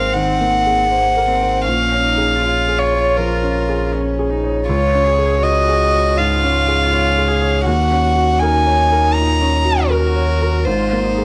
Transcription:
Already playing: G#1 G#2 A#3 C4 G#4 A#4 C5 F5
0.14 D#3 F#5
0.41 A#3
0.66 G#4
0.88 A#3 C5
1.17 A#4
1.27 C4
1.42 C5
1.64 A#1 A#2 C#4 F5
1.92 C#4
2.05 D#4
2.17 G#4
2.43 F4 C#5
2.68 G#4
2.79 C#5
2.94 C#5
3.17 F3 A#4
3.43 C#4
3.69 G#4
3.94 C#4 C#5
4.19 G#4
4.30 D#4
4.44 C#5
4.67 C#2 F4 C#5
4.94 C#4
5.04 G#4
5.18 G#4
5.42 F#4 C#5 D#5
5.69 G#4
5.94 C#5
6.17 G#2 F4 F5
6.44 C#4
6.68 G#4
6.91 F4 C#5
7.18 G#4
7.28 G#4
7.41 C#5
7.65 D#2 F#4 F#5
7.91 C#4
8.15 F#4
8.39 D#4 A#4 G#5
8.67 C#5
8.92 A#4
9.14 A#2 A#5
9.41 C#4
9.65 F#4
9.89 F#4 A#4
10.16 C#5
10.41 A#4
10.65 G#1 G#2 F4 C5
10.93 A#3
11.04 D#4
11.18 G#4

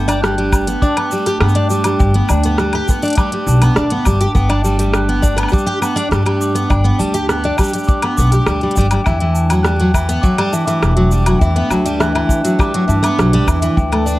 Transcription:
Already playing: G1 A3 D4 B4 G5
0.08 D4, closed hi-hat, low woodblock, shaker
0.22 G3 F#6, cross-stick, shaker
0.38 G3, closed hi-hat
0.52 kick, low woodblock, shaker
0.67 B3, closed hi-hat, shaker
0.82 D4 D6, kick, shaker
0.97 B3, closed hi-hat, low woodblock
1.11 G3 A5, shaker
1.26 G4, cross-stick, closed hi-hat, shaker
1.40 G2 B3, cross-stick, low woodblock
1.49 shaker
1.55 D4, closed hi-hat
1.70 G3 D6, shaker
1.84 G3, closed hi-hat, low woodblock, shaker
2.00 G1 G5, kick, shaker
2.14 B3, closed hi-hat
2.29 D2 D4 A5, low woodblock, shaker
2.43 B3, closed hi-hat, shaker
2.58 G3 F#6, cross-stick, shaker
2.73 G4, closed hi-hat, low woodblock
2.88 B3, kick, shaker
3.02 D4, closed hi-hat, shaker
3.05 closed hi-hat
3.08 closed hi-hat
3.10 closed hi-hat
3.13 closed hi-hat
3.15 G3 D6, kick, closed hi-hat, low woodblock, shaker
3.32 G3, closed hi-hat
3.47 B1 A5, shaker
3.62 B3, closed hi-hat, low woodblock, shaker
3.76 D2 D4, cross-stick, shaker
3.90 B3, closed hi-hat
4.05 G1 G3 D6, kick, low woodblock, shaker
4.21 G4, closed hi-hat, shaker
4.35 G1 B3 G5, kick, shaker
4.49 D4, closed hi-hat, low woodblock
4.64 G3 A5, shaker
4.79 G3, closed hi-hat, shaker
4.93 F#6, cross-stick, low woodblock, shaker
5.09 B3, closed hi-hat
5.22 D4, kick, shaker
5.37 B3, closed hi-hat, low woodblock, shaker
5.43 low woodblock
5.48 G3, low woodblock, shaker
5.53 D6, kick, shaker
5.58 shaker
5.67 G4, closed hi-hat
5.82 B3 A5, low woodblock, shaker
5.96 D4, cross-stick, closed hi-hat, shaker
6.11 G2 G3, cross-stick, shaker
6.25 G3, closed hi-hat, low woodblock
6.41 D6, shaker
6.55 B3, closed hi-hat, shaker
6.70 G1 D4 G5, kick, low woodblock, shaker
6.84 B3, closed hi-hat
6.99 D2 G3 A5, shaker
7.14 G4, closed hi-hat, shaker
7.29 B3 F#6, cross-stick, shaker
7.44 D4, closed hi-hat
7.58 G3, kick, low woodblock, shaker
7.63 shaker
7.68 shaker
7.73 G3, closed hi-hat, shaker
7.78 shaker
7.84 D6, shaker
7.88 kick, shaker
8.02 B3, closed hi-hat, low woodblock
8.17 B1 B3 D6, kick, shaker
8.31 G4 G5, cross-stick, closed hi-hat, shaker
8.46 D2 G3, cross-stick, low woodblock, shaker
8.60 G3 G5, closed hi-hat
8.71 closed hi-hat
8.76 G1 G3 G5, kick, shaker
8.81 closed hi-hat
8.91 G3, closed hi-hat, low woodblock, shaker
9.04 E2 E3 A3 G5, kick, low woodblock, shaker
9.20 E3, closed hi-hat
9.34 A5, shaker
9.50 F#3, closed hi-hat, low woodblock, shaker
9.63 G3 F#6, cross-stick, shaker
9.71 D4
9.80 F#3, closed hi-hat
9.94 E3, kick, low woodblock, shaker
10.09 B3, closed hi-hat, shaker
10.22 F#3 D6, kick, shaker
10.38 G3, closed hi-hat, low woodblock
10.52 E3 A5, shaker
10.66 E3 D6, cross-stick, closed hi-hat, shaker
10.83 E1 B4, cross-stick, low woodblock, shaker
10.96 F#3, closed hi-hat
11.11 G3, shaker
11.26 F#3, closed hi-hat, low woodblock, shaker
11.39 E2 E3 G5, kick, shaker
11.56 B3, closed hi-hat
11.70 D2 F#3 A5, low woodblock, shaker
11.85 G3, closed hi-hat, shaker
12.00 E3 F#6, cross-stick, shaker
12.15 E3, closed hi-hat, low woodblock
12.29 kick, shaker
12.44 F#3, closed hi-hat, shaker
12.59 G3 D6, kick, low woodblock, shaker
12.74 F#3, closed hi-hat
12.88 G2 E3 A5, shaker
13.03 B3 D6, closed hi-hat, low woodblock, shaker
13.18 B1 F#3, cross-stick, shaker
13.33 G3, closed hi-hat
13.48 E2 E3, kick, low woodblock, shaker
13.62 E3, closed hi-hat, shaker
13.77 D2 G5, kick, shaker
13.92 A3, closed hi-hat, low woodblock
14.06 D4 A5, shaker

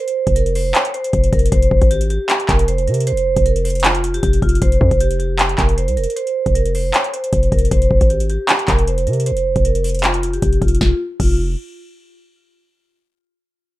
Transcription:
Already playing: C5
0.08 closed hi-hat
0.27 F1, kick, closed hi-hat
0.36 A#4, closed hi-hat
0.46 closed hi-hat
0.55 C5, open hi-hat
0.75 C#5, clap, closed hi-hat
0.85 closed hi-hat
0.94 C5, closed hi-hat
1.04 closed hi-hat
1.13 F1, kick, closed hi-hat
1.24 closed hi-hat
1.33 F1 A#4, kick, closed hi-hat
1.39 closed hi-hat
1.46 closed hi-hat
1.52 F1 C5, kick, closed hi-hat
1.62 closed hi-hat
1.71 F1, kick
1.82 G#1, kick, closed hi-hat
1.91 G4, closed hi-hat
2.01 closed hi-hat
2.10 G4, closed hi-hat
2.29 clap, closed hi-hat
2.40 closed hi-hat
2.49 F1 A#4, kick, clap, closed hi-hat
2.59 closed hi-hat
2.68 C5, closed hi-hat
2.78 closed hi-hat
2.87 C3 A#4, closed hi-hat
2.94 closed hi-hat
3.00 closed hi-hat
3.07 C5, closed hi-hat
3.12 F1
3.17 closed hi-hat
3.36 F1, kick, closed hi-hat
3.46 A#4, closed hi-hat
3.56 closed hi-hat
3.65 C5, closed hi-hat, open hi-hat
3.70 closed hi-hat
3.75 closed hi-hat
3.80 closed hi-hat
3.84 F4, clap, closed hi-hat
3.95 closed hi-hat
4.04 closed hi-hat
4.14 G4, closed hi-hat
4.23 F1 G4, kick, closed hi-hat
4.33 closed hi-hat
4.42 F1 F4, kick, closed hi-hat
4.49 closed hi-hat
4.55 closed hi-hat
4.62 F1 C5, kick, closed hi-hat
4.72 closed hi-hat
4.81 F2, kick
4.91 F1, kick, closed hi-hat
5.00 G4, closed hi-hat
5.11 closed hi-hat
5.19 G4, closed hi-hat
5.39 clap, closed hi-hat
5.49 closed hi-hat
5.58 F1 A#4, kick, clap, closed hi-hat
5.69 closed hi-hat
5.78 C5, closed hi-hat
5.88 C2, closed hi-hat
5.97 F1 A#4, closed hi-hat
6.04 closed hi-hat
6.10 closed hi-hat
6.16 C5, closed hi-hat
6.27 closed hi-hat
6.46 F1, kick, closed hi-hat
6.55 A#4, closed hi-hat
6.65 closed hi-hat
6.75 C5, open hi-hat
6.94 C#5, clap, closed hi-hat
7.04 closed hi-hat
7.13 C5, closed hi-hat
7.24 closed hi-hat
7.33 F1, kick, closed hi-hat
7.43 closed hi-hat
7.52 F1 A#4, kick, closed hi-hat
7.59 closed hi-hat
7.65 closed hi-hat
7.71 F1 C5, kick, closed hi-hat
7.82 closed hi-hat
7.91 F1, kick
8.01 G#1, kick, closed hi-hat
8.10 G4, closed hi-hat
8.20 closed hi-hat
8.30 G4, closed hi-hat
8.49 clap, closed hi-hat
8.59 closed hi-hat
8.68 F1 A#4, kick, clap, closed hi-hat
8.79 closed hi-hat
8.88 C5, closed hi-hat
8.98 closed hi-hat
9.07 C3 A#4, closed hi-hat
9.13 closed hi-hat
9.20 closed hi-hat
9.26 C5, closed hi-hat
9.31 F1
9.37 closed hi-hat
9.56 F1, kick, closed hi-hat
9.65 A#4, closed hi-hat
9.75 closed hi-hat
9.84 C5, closed hi-hat, open hi-hat
9.89 closed hi-hat
9.95 closed hi-hat
9.99 closed hi-hat
10.04 F4, clap, closed hi-hat
10.14 closed hi-hat
10.23 closed hi-hat
10.33 G4, closed hi-hat
10.42 F1 G4, kick, closed hi-hat
10.53 closed hi-hat
10.62 F1 F4, kick, closed hi-hat
10.68 closed hi-hat
10.75 closed hi-hat
10.81 F1 F4, kick, snare
11.20 F1 F4, kick, crash

